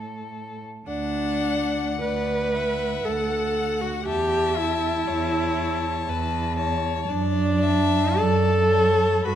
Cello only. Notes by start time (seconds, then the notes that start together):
Already playing: A2
0.87 D2
2.01 D2
3.05 D2
4.08 E2
5.08 E2
6.09 E2
7.09 F#2
8.19 F#2
9.25 G2